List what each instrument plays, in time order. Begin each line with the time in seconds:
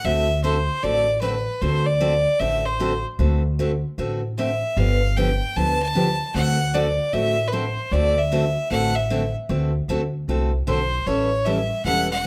0.04 upright bass D2, steel-string acoustic guitar D3 A3 C4 F#4 A4, fiddle E5
0.44 steel-string acoustic guitar D3 A3 C4 F#4 A4, fiddle C5
0.83 upright bass A1, steel-string acoustic guitar D3 A3 C4 F#4 A4, fiddle D5
1.22 steel-string acoustic guitar D3 A3 C4 F#4 A4, fiddle B4
1.62 upright bass D2, steel-string acoustic guitar D3 A3 C4 F#4 A4, fiddle C5
1.86 fiddle D5
2.00 steel-string acoustic guitar D3 A3 C4 F#4 A4
2.40 upright bass A1, steel-string acoustic guitar D3 A3 C4 F#4 A4, fiddle E5
2.66 fiddle C5
2.80 steel-string acoustic guitar D3 A3 C4 F#4 A4
3.19 upright bass D2, steel-string acoustic guitar D3 A3 C4 F#4 A4
3.59 steel-string acoustic guitar D3 A3 C4 F#4 A4
3.98 upright bass A1, steel-string acoustic guitar D3 A3 C4 F#4 A4
4.38 steel-string acoustic guitar D3 A3 C4 F#4 A4, fiddle E5
4.77 upright bass G1, steel-string acoustic guitar D3 F3 B3 D4 G4, fiddle F5
5.17 steel-string acoustic guitar D3 F3 B3 D4 G4, fiddle G5
5.56 upright bass D2, steel-string acoustic guitar D3 F3 B3 D4 G4, fiddle A5
5.82 fiddle A5
5.95 steel-string acoustic guitar D3 F3 B3 D4 G4
6.35 upright bass D2, steel-string acoustic guitar D3 A3 C4 F#4 A4, fiddle F#5
6.74 steel-string acoustic guitar D3 A3 C4 F#4 A4, fiddle D5
7.13 upright bass A1, steel-string acoustic guitar D3 A3 C4 F#4 A4, fiddle E5
7.48 fiddle B4
7.52 steel-string acoustic guitar D3 A3 C4 F#4 A4, fiddle C5
7.92 upright bass D2, steel-string acoustic guitar D3 A3 C4 F#4 A4, fiddle D5
8.18 fiddle E5
8.32 steel-string acoustic guitar D3 A3 C4 F#4 A4
8.71 upright bass A1, steel-string acoustic guitar D3 A3 C4 F#4 A4, fiddle F#5
8.96 fiddle E5
9.10 steel-string acoustic guitar D3 A3 C4 F#4 A4
9.49 upright bass D2, steel-string acoustic guitar D3 A3 C4 F#4 A4
9.88 upright bass D2, steel-string acoustic guitar D3 A3 C4 F#4 A4
10.28 upright bass C2, steel-string acoustic guitar D3 A3 C4 F#4 A4
10.67 upright bass B1, steel-string acoustic guitar D3 A3 C4 F#4 A4, fiddle C5
11.06 upright bass A1, steel-string acoustic guitar E3 G3 C#4 E4 A4, fiddle C#5
11.45 steel-string acoustic guitar E3 G3 C#4 E4 A4, fiddle E5
11.85 upright bass E1, steel-string acoustic guitar E3 G3 C#4 E4 A4, fiddle F#5
12.12 fiddle F#5